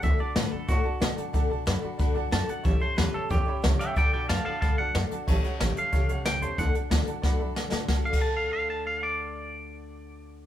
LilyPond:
<<
  \new Staff \with { instrumentName = "Upright piano" } { \time 4/4 \key d \major \tempo 4 = 184 << { r1 | r1 | r1 | r1 |
r1 | r2 r8 e''8 r8 a''8 | r1 | r1 | } \\ { <d'' fis'' a''>16 r16 <d'' fis'' a''>16 r16 <d'' fis'' a''>16 r16 <d'' fis'' b''>16 r16 <d'' fis'' a''>16 r16 <d'' fis'' a''>16 r16 <d'' fis'' a''>16 r16 <d'' fis'' a''>16 r16 | <d'' fis'' a''>16 r16 <d'' fis'' a''>16 r16 <d'' fis'' b''>16 r16 <d'' fis'' b''>16 r16 <d'' fis'' b''>16 r16 <d'' fis'' a''>16 r16 <d'' fis'' a''>16 r16 <d'' fis'' a''>16 r16 | <cis'' e'' a''>16 r16 <cis'' e'' a''>16 r16 <cis'' e'' a''>16 r16 <cis'' e'' a''>16 r16 <cis'' e'' a''>16 r16 <cis'' e'' b''>16 r16 <cis'' e'' a''>16 r16 <cis'' e'' a''>16 r16 | <d'' fis'' a''>16 r16 <d'' fis'' a''>16 r16 <d'' fis'' a''>16 r16 <d'' fis'' a''>16 r16 <d'' b''>16 r16 <d'' fis'' a''>16 r16 <d'' fis'' a''>16 r16 <d'' fis'' a''>16 r16 |
<cis'' e'' a''>16 r16 <cis'' e'' fis''>16 r16 <cis'' e'' a''>16 r16 <cis'' e'' a''>16 r16 <cis'' e'' a''>16 r16 <cis'' e'' fis''>16 r16 <cis'' e'' a''>16 r16 <cis'' e'' a''>16 r16 | <d'' fis'' a''>16 r16 <d'' fis'' a''>16 r16 <d'' fis'' a''>16 r16 <d'' fis'' a''>16 r16 <d'' fis'' b''>16 r16 <d'' fis'' b''>16 r16 <d'' fis'' a''>16 r16 <d'' fis''>16 r16 | <d'' fis'' a''>16 r8 <d'' fis'' a''>2.~ <d'' fis'' a''>16~ | <d'' fis'' a''>1 | } >> }
  \new Staff \with { instrumentName = "Clean electric guitar" } { \time 4/4 \key d \major e''8 d''8 b'8 a'8 fis'4 r4 | r2. a''8 fis''8 | e''8 c''8 b'8 a'8 g'4 r8 <e'' g''>8 | <d'' g''>8 <d'' g''>8 <f'' a''>8 <f'' a''>8 <f'' a''>8 fis''8 r4 |
r4. f''4. g''8 c''8 | fis''8 r2. r8 | r8 f''8 a''8 f''8 f''8 a''8 f''8 d''8~ | d''1 | }
  \new Staff \with { instrumentName = "Steel-string acoustic guitar" } { \time 4/4 \key d \major <d a d' fis' a'>8 <d' fis' a'>8 <a d' fis' a'>8 <d' fis' a'>8 <d a d' fis' a'>8 <d' fis' a'>8 <a d' fis' a'>8 <d' fis' a'>8 | <d a d' fis' a'>8 <d' fis' a'>8 <a d' fis' a'>8 <d' fis' a'>8 <d a d' fis' a'>8 <d' fis' a'>8 <a d' fis' a'>8 <d' fis' a'>8 | <a, e g cis' g' a'>8 <g cis' g' a'>8 <g cis' g' a'>8 <g cis' g' a'>8 <a, e g cis' g' a'>8 <g cis' g' a'>8 <g cis' g' a'>8 <g cis' g' a'>8 | <d a d' fis' a'>8 <d' fis' a'>8 <a d' fis' a'>8 <d' fis' a'>8 <d a d' fis' a'>8 <d' fis' a'>8 <a d' fis' a'>8 <d' fis' a'>8 |
<a, e g cis' g' a'>8 <g cis' g' a'>8 <g cis' g' a'>8 <g cis' a'>8 <a, e g cis' g' a'>8 <g cis' g' a'>8 <g cis' g' a'>8 <g cis' g' a'>8 | <d a d' fis' a'>8 <d' fis' a'>8 <a d' fis' a'>8 <d' fis' a'>8 <d a d' fis' a'>8 <d' fis' a'>8 <a d' fis' a'>8 <d' fis' a'>8 | <d a d' fis' a'>16 r8 <d a d' fis' a'>2.~ <d a d' fis' a'>16~ | <d a d' fis' a'>1 | }
  \new Staff \with { instrumentName = "Upright bass" } { \clef bass \time 4/4 \key d \major d,8 r8 a,8 r8 a,8 r8 b,8 r8 | d8 b,8 fis,8 r8 d,8 d,8 fis,8 r8 | a,,8 r8 e,8 r8 e,8 r8 cis,8 r8 | d,8 b,8 fis,8 r8 d,8 d,8 fis,8 r8 |
a,,8 r8 a,,8 r8 cis,8 cis,8 cis,8 e,8 | d,8 r8 d,8 r8 fis,8 fis,8 fis,8 a,8 | d,16 r8 d,2.~ d,16~ | d,1 | }
  \new DrumStaff \with { instrumentName = "Drums" } \drummode { \time 4/4 <hh bd>4 <hh sn>4 <hh bd>4 <hh sn>8 hh8 | <hh bd>4 <hh sn>4 <hh bd>4 <hh sn>8 hh8 | <hh bd>4 <hh sn>4 <hh bd>4 <hh sn>8 hh8 | <hh bd>4 <hh sn>4 <hh bd>4 <hh sn>8 hh8 |
<cymc bd>8 hh8 <hh sn>8 hh8 <hh bd>8 hh8 <hh sn>8 hh8 | <hh bd>8 hh8 <hh sn>8 hh8 <bd sn>4 sn8 sn8 | <bd sn>8. <cymc bd>16 r4 r4 r4 | r4 r4 r4 r4 | }
>>